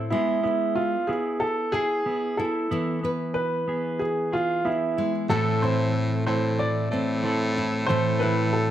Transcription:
Already playing: nylon-string guitar A2 C4 E4 A4, clean electric guitar C4 E4 A4
0.10 nylon-string guitar G#3, clean electric guitar B3 G#4, upright piano E4
0.43 clean electric guitar B3, upright piano E4
0.76 upright piano F4
1.07 clean electric guitar B3 E4, upright piano G#4
1.40 upright piano A4
1.72 nylon-string guitar E4, upright piano G#4, clean electric guitar G#4
2.06 clean electric guitar B3 E4
2.37 clean electric guitar E4, nylon-string guitar E4, upright piano A4
2.71 nylon-string guitar E3 E4, clean electric guitar B3
3.03 clean electric guitar B3, nylon-string guitar B4
3.34 upright piano B4
3.68 clean electric guitar B3 G#4
3.99 upright piano G#4
4.32 upright piano F4, clean electric guitar G#4
4.65 clean electric guitar B3 E4 G#4, upright piano E4
4.97 nylon-string guitar G#3, clean electric guitar E4
5.29 baritone saxophone A2, nylon-string guitar A2 A3 C4 E4, clean electric guitar E3 A4, upright piano A4
5.62 clean electric guitar C4, nylon-string guitar E4, upright piano C5
6.26 baritone saxophone A2, clean electric guitar C4 E4 A4, upright piano C5
6.59 upright piano D5
6.91 baritone saxophone A2, nylon-string guitar C4, clean electric guitar A4
7.24 clean electric guitar C4 E4 A4
7.56 clean electric guitar E4, nylon-string guitar E4
7.87 baritone saxophone A2, nylon-string guitar A2 E4, clean electric guitar E3 A4, upright piano C5
8.20 clean electric guitar C4, nylon-string guitar E4, upright piano B4
8.53 upright piano A4

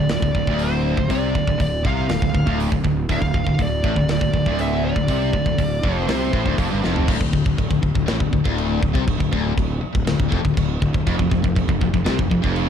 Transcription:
Already playing: lead electric guitar D5
0.00 distorted electric guitar D2
0.09 fingered electric bass D1, distorted electric guitar D2, lead electric guitar D5, snare, open hi-hat
0.22 fingered electric bass D1, distorted electric guitar D2, kick
0.35 fingered electric bass D1, distorted electric guitar D2, kick
0.47 fingered electric bass D1, distorted electric guitar D2, kick
0.59 open hi-hat
0.63 lead electric guitar C5
0.97 fingered electric bass D1, distorted electric guitar D2, kick
1.10 fingered electric bass C2, distorted electric guitar C3, lead electric guitar D5, kick, open hi-hat
1.35 fingered electric bass D1, distorted electric guitar D2, kick
1.47 fingered electric bass D1, distorted electric guitar D2, kick
1.59 fingered electric bass D1, distorted electric guitar D2, lead electric guitar D5, kick, open hi-hat
1.85 fingered electric bass C2, distorted electric guitar C3, lead electric guitar F5, kick
2.09 fingered electric bass D1, distorted electric guitar D2, snare, open hi-hat
2.22 fingered electric bass D1, distorted electric guitar D2, kick
2.34 fingered electric bass D1, distorted electric guitar D2, kick
2.47 fingered electric bass D1, distorted electric guitar D2, kick
2.60 open hi-hat
2.72 fingered electric bass D1, distorted electric guitar D2, kick
2.84 fingered electric bass D1, distorted electric guitar D2, kick
3.09 fingered electric bass D1, distorted electric guitar D2, lead electric guitar F5, kick, open hi-hat
3.22 fingered electric bass D1, distorted electric guitar D2, kick
3.34 fingered electric bass D1, distorted electric guitar D2, kick
3.47 fingered electric bass D1, distorted electric guitar D2, kick
3.59 fingered electric bass D1, distorted electric guitar D2, lead electric guitar D5, kick, open hi-hat
3.84 fingered electric bass A1, distorted electric guitar A2, kick
3.96 fingered electric bass D1, distorted electric guitar D2, kick
4.09 fingered electric bass D1, distorted electric guitar D2, lead electric guitar D5, snare, open hi-hat
4.21 fingered electric bass D1, distorted electric guitar D2, kick
4.34 fingered electric bass D1, distorted electric guitar D2, kick
4.46 fingered electric bass D1, distorted electric guitar D2, kick
4.59 lead electric guitar E5, open hi-hat
4.85 lead electric guitar D5
4.96 fingered electric bass D1, distorted electric guitar D2, kick
5.08 fingered electric bass C2, distorted electric guitar C3, kick, open hi-hat
5.33 fingered electric bass D1, distorted electric guitar D2, kick
5.46 fingered electric bass D1, distorted electric guitar D2, kick
5.58 fingered electric bass D1, distorted electric guitar D2, kick, open hi-hat
5.84 fingered electric bass F1, distorted electric guitar F2, kick
5.97 lead electric guitar C5
6.08 fingered electric bass C2, distorted electric guitar C3, snare, open hi-hat
6.33 fingered electric bass A1, distorted electric guitar A2, kick
6.45 fingered electric bass D1, distorted electric guitar D2, kick
6.57 fingered electric bass F1, distorted electric guitar F2, kick, open hi-hat
6.71 fingered electric bass G1, distorted electric guitar G2
6.83 fingered electric bass F1, distorted electric guitar F2, snare
6.96 floor tom
7.08 fingered electric bass D1, distorted electric guitar D2, kick, crash, china
7.21 fingered electric bass D1, distorted electric guitar D2, kick
7.33 fingered electric bass D1, distorted electric guitar D2, kick
7.46 fingered electric bass D1, distorted electric guitar D2, kick
7.58 fingered electric bass D1, distorted electric guitar D2, kick, china
7.71 fingered electric bass D1, distorted electric guitar D2, kick
7.82 fingered electric bass D1, distorted electric guitar D2, kick
7.95 fingered electric bass D1, distorted electric guitar D2, kick
8.08 fingered electric bass A1, distorted electric guitar A2, snare, china
8.20 fingered electric bass D1, distorted electric guitar D2, kick
8.33 fingered electric bass D1, distorted electric guitar D2, kick
8.45 fingered electric bass D1, distorted electric guitar D2, kick
8.58 china
8.83 fingered electric bass D1, distorted electric guitar D2, kick
8.94 fingered electric bass C2, distorted electric guitar C3, kick
9.07 fingered electric bass D1, distorted electric guitar D2, kick, china
9.20 fingered electric bass D1, distorted electric guitar D2, kick
9.32 fingered electric bass D1, distorted electric guitar D2, kick
9.57 fingered electric bass D1, distorted electric guitar D2, kick, china
9.83 muted distorted electric guitar stroke, muted fingered electric bass stroke
9.95 fingered electric bass D1, distorted electric guitar D2, kick
10.06 fingered electric bass D1, distorted electric guitar D2, snare, china
10.20 fingered electric bass D1, distorted electric guitar D2, kick
10.32 fingered electric bass F1, distorted electric guitar F2, kick
10.45 fingered electric bass D1, distorted electric guitar D2, kick
10.57 fingered electric bass D1, distorted electric guitar D2, kick, china
10.82 fingered electric bass D1, distorted electric guitar D2, kick
10.94 fingered electric bass D1, distorted electric guitar D2, kick
11.07 fingered electric bass F1, distorted electric guitar F2, kick, china
11.19 fingered electric bass F1, distorted electric guitar F2, kick
11.31 fingered electric bass F1, distorted electric guitar F2, kick
11.44 fingered electric bass F1, distorted electric guitar F2, kick
11.56 fingered electric bass F1, distorted electric guitar F2, kick, china
11.69 fingered electric bass F1, distorted electric guitar F2, kick
11.81 fingered electric bass F1, distorted electric guitar F2, kick
11.93 fingered electric bass F1, distorted electric guitar F2, kick
12.06 fingered electric bass C2, distorted electric guitar C3, snare, china
12.19 fingered electric bass F1, distorted electric guitar F2, kick
12.30 fingered electric bass F1, distorted electric guitar F2, kick
12.44 fingered electric bass F1, distorted electric guitar F2, kick
12.56 china

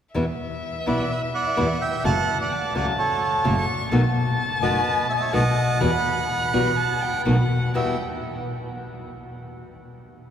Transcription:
0.14 double bass E2, nylon-string guitar B2 E3 G3 B3 E4, violin E5
0.86 double bass B1, nylon-string guitar B2 E3 G3 B3 E4, bandoneon B4 D5
1.10 bandoneon B4 E5
1.34 bandoneon D5 F#5
1.57 double bass E2, nylon-string guitar B2 E3 G3 B3 E4
1.81 bandoneon E5 G5
2.04 double bass F#1, nylon-string guitar C#3 F#3 A3 C#4 F#4, violin F#5, bandoneon F#5 A5
2.41 bandoneon D5 F#5
2.52 violin A5
2.75 double bass C#2, nylon-string guitar C#3 F#3 A3 C#4 F#4, bandoneon D5 F#5
2.99 bandoneon A4 C#5
3.44 double bass F#1, nylon-string guitar C#3 F#3 A3 C#4 F#4, violin C#6
3.91 double bass B1, nylon-string guitar B2 D#3 A3 B3 F#4, violin A5
4.62 double bass F#1, nylon-string guitar B2 D#3 A3 B3 F#4, bandoneon B4 D#5
5.10 bandoneon C#5 E5
5.16 bandoneon D#5
5.20 bandoneon C#5 E5
5.33 double bass B1, nylon-string guitar B2 D#3 A3 B3 F#4, bandoneon D#5 F#5
5.80 double bass E2, nylon-string guitar B2 E3 G3 B3 F#4, violin B5
6.29 violin B5
6.53 double bass B1, nylon-string guitar B2 E3 G3 B3 F#4
6.77 violin A5
7.02 violin G5
7.20 violin G5
7.25 double bass B1, nylon-string guitar B2 D#3 A3 B3 F#4, violin F#5
7.74 nylon-string guitar E2 B2 E3 G3 B3 F#4, double bass E2, bandoneon E5, violin G5

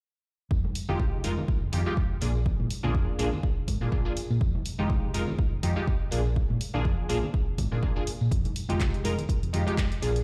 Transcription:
0.51 fingered electric bass F2, kick, tambourine
0.64 high conga
0.75 open hi-hat, tambourine
0.89 fingered electric bass F1, analog polysynth G#3 D#4 F4 G4, tambourine, low conga
0.99 fingered electric bass C2, kick, tambourine
1.24 fingered electric bass F1, analog polysynth G#3 D#4 F4 A#4, open hi-hat, tambourine, high conga
1.37 tambourine, low conga
1.48 muted fingered electric bass stroke, kick, tambourine
1.62 fingered electric bass F1
1.72 fingered electric bass F2, analog polysynth G#3 D#4 F4 G4, open hi-hat, tambourine, low conga
1.86 analog polysynth G#3 D#4 F4 G4, tambourine, high conga
1.97 kick, tambourine
2.21 fingered electric bass A#1, analog polysynth A#3 D4 F4 G#4, open hi-hat, tambourine
2.35 tambourine
2.46 kick, tambourine
2.60 fingered electric bass A#2, high conga
2.70 open hi-hat, tambourine
2.83 fingered electric bass A#1, analog polysynth A#3 D4 F4 G#4, tambourine, low conga
2.95 fingered electric bass F2, kick, tambourine
3.19 fingered electric bass A#1, analog polysynth A#3 D4 F4 G#4, open hi-hat, tambourine, high conga
3.33 tambourine, low conga
3.43 kick, tambourine
3.68 fingered electric bass G#2, kick, open hi-hat, tambourine, low conga
3.81 fingered electric bass A#2, analog polysynth A#3 D4 F4 G#4, tambourine, high conga
3.92 fingered electric bass A#1, analog polysynth A#3 D4 F4 G#4, kick, tambourine
4.05 analog polysynth A#3 D4 F4 G#4
4.17 muted fingered electric bass stroke, open hi-hat, tambourine
4.30 fingered electric bass A#2, tambourine
4.41 fingered electric bass F2, kick, tambourine
4.55 high conga
4.65 open hi-hat, tambourine
4.79 fingered electric bass F1, analog polysynth G#3 D#4 F4 G4, tambourine, low conga
4.90 fingered electric bass C2, kick, tambourine
5.14 fingered electric bass F1, analog polysynth G#3 D#4 F4 A#4, open hi-hat, tambourine, high conga
5.27 tambourine, low conga
5.38 muted fingered electric bass stroke, kick, tambourine
5.52 fingered electric bass F1
5.63 fingered electric bass F2, analog polysynth G#3 D#4 F4 G4, open hi-hat, tambourine, low conga
5.76 analog polysynth G#3 D#4 F4 G4, tambourine, high conga
5.87 kick, tambourine
6.11 fingered electric bass A#1, analog polysynth A#3 D4 F4 G#4, open hi-hat, tambourine
6.26 tambourine
6.36 kick
6.50 fingered electric bass A#2, high conga
6.61 open hi-hat, tambourine
6.74 fingered electric bass A#1, analog polysynth A#3 D4 F4 G#4, tambourine, low conga
6.84 fingered electric bass F2, kick, tambourine
7.09 fingered electric bass A#1, analog polysynth A#3 D4 F4 G#4, open hi-hat, tambourine, high conga
7.23 tambourine, low conga
7.34 kick, tambourine
7.58 fingered electric bass G#2, kick, open hi-hat, tambourine, low conga
7.72 fingered electric bass A#2, analog polysynth A#3 D4 F4 G#4, tambourine, high conga
7.82 fingered electric bass A#1, analog polysynth A#3 D4 F4 G#4, kick, tambourine
7.96 analog polysynth A#3 D4 F4 G#4
8.07 muted fingered electric bass stroke, open hi-hat, tambourine
8.21 fingered electric bass A#2, tambourine
8.31 fingered electric bass F2, kick, closed hi-hat, tambourine
8.45 closed hi-hat, high conga
8.56 open hi-hat, tambourine
8.69 fingered electric bass F1, analog polysynth G#3 D#4 F4 G4, closed hi-hat, tambourine, low conga
8.80 fingered electric bass C2, kick, clap, closed hi-hat, tambourine
8.94 closed hi-hat
9.04 fingered electric bass F1, analog polysynth G#3 D#4 F4 A#4, open hi-hat, tambourine, high conga
9.18 closed hi-hat, tambourine, low conga
9.28 kick, closed hi-hat, tambourine
9.43 fingered electric bass F1, closed hi-hat
9.53 fingered electric bass F2, analog polysynth G#3 D#4 F4 G4, open hi-hat, tambourine, low conga
9.67 analog polysynth G#3 D#4 F4 G4, closed hi-hat, tambourine, high conga
9.78 kick, clap, closed hi-hat, tambourine
9.92 closed hi-hat
10.02 fingered electric bass A#1, analog polysynth A#3 D4 F4 G#4, open hi-hat, tambourine
10.16 closed hi-hat, tambourine

